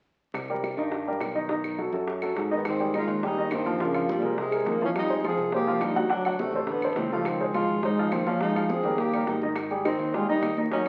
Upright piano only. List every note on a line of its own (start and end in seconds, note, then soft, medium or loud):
0.50 0.73 G3 medium
0.50 0.73 G4 medium
0.50 0.73 A#4 medium
0.78 1.01 D#3 medium
0.78 1.02 D#4 medium
0.78 1.02 D#5 medium
1.07 1.31 G3 medium
1.07 1.31 G4 medium
1.07 1.31 A#4 medium
1.35 1.47 D#3 medium
1.35 1.47 D#4 medium
1.35 1.47 D#5 medium
1.50 1.73 D#3 medium
1.50 1.74 D#4 medium
1.50 1.74 D#5 medium
1.79 1.91 F#3 medium
1.79 1.91 F#4 medium
1.79 1.91 A4 medium
1.93 2.16 F#3 medium
1.93 2.17 F#4 medium
1.93 2.17 A4 medium
2.23 2.46 F#3 medium
2.23 2.46 F#4 medium
2.23 2.46 A4 medium
2.51 2.63 D#3 medium
2.51 2.63 D#4 medium
2.51 2.63 D#5 medium
2.80 2.92 G3 medium
2.80 2.92 G4 medium
2.80 2.92 G#4 medium
2.94 3.18 D#3 medium
2.94 3.18 D#4 medium
2.94 3.18 D#5 medium
3.23 3.35 G3 medium
3.23 3.35 G4 medium
3.23 3.35 G#4 medium
3.37 3.61 D#3 medium
3.37 3.61 D#4 medium
3.37 3.61 D#5 medium
3.66 3.78 F3 medium
3.66 3.78 F4 medium
3.66 3.78 F5 medium
3.80 3.92 F3 medium
3.80 3.92 F4 medium
3.80 3.93 F5 medium
3.94 4.18 F3 medium
3.94 4.18 F4 medium
3.94 4.18 F5 medium
4.23 4.47 G#3 medium
4.23 4.46 G#4 medium
4.23 4.47 A#4 medium
4.52 4.75 G#3 medium
4.52 4.76 G#4 medium
4.52 4.76 A#4 medium
4.81 5.05 F3 medium
4.81 5.05 F4 medium
4.81 5.05 F5 medium
5.09 5.21 G#3 medium
5.09 5.21 G#4 medium
5.09 5.22 C5 medium
5.25 5.48 F3 medium
5.25 5.48 F4 medium
5.25 5.49 F5 medium
5.54 5.65 G#3 medium
5.54 5.65 G#4 medium
5.54 5.65 C5 medium
5.67 5.91 F3 medium
5.67 5.91 F4 medium
5.67 5.91 F5 medium
5.96 6.08 F#3 medium
5.96 6.08 F#4 medium
5.96 6.08 F#5 medium
6.10 6.22 F#3 medium
6.10 6.22 F#4 medium
6.10 6.22 F#5 medium
6.26 6.49 F#3 medium
6.26 6.49 F#4 medium
6.26 6.49 F#5 medium
6.55 6.78 A3 medium
6.55 6.78 A4 medium
6.55 6.78 C5 medium
6.84 7.07 A3 medium
6.84 7.07 A4 medium
6.84 7.07 C5 medium
7.12 7.35 F3 medium
7.12 7.36 F4 medium
7.12 7.36 F5 medium
7.40 7.52 G#3 medium
7.40 7.52 G#4 medium
7.40 7.53 C5 medium
7.54 7.78 F3 medium
7.54 7.78 F4 medium
7.54 7.78 F5 medium
7.84 7.96 G#3 medium
7.84 7.96 G#4 medium
7.84 7.96 C5 medium
7.99 8.22 F3 medium
7.99 8.22 F4 medium
7.99 8.22 F5 medium
8.26 8.38 F3 medium
8.26 8.38 F4 medium
8.26 8.39 F5 medium
8.40 8.52 F3 medium
8.40 8.53 F4 medium
8.40 8.53 F5 medium
8.55 8.79 F3 medium
8.55 8.79 F4 medium
8.55 8.79 F5 medium
8.84 9.08 G3 medium
8.84 9.08 G4 medium
8.84 9.08 A#4 medium
9.14 9.37 G3 medium
9.14 9.37 G4 medium
9.14 9.37 A#4 medium
9.43 9.66 D#3 medium
9.43 9.66 D#4 medium
9.43 9.66 D#5 medium
9.71 9.82 G3 medium
9.71 9.83 G4 medium
9.71 9.83 G#4 medium
9.85 10.09 D#3 medium
9.85 10.08 D#4 medium
9.85 10.09 D#5 medium
10.14 10.26 G3 medium
10.14 10.26 G4 medium
10.14 10.27 G#4 medium
10.29 10.52 D#3 medium
10.29 10.52 D#4 medium
10.29 10.52 D#5 medium
10.57 10.69 D#3 medium
10.57 10.69 D#4 medium
10.57 10.69 D#5 medium
10.72 10.83 D#3 medium
10.72 10.83 D#4 medium
10.72 10.84 D#5 medium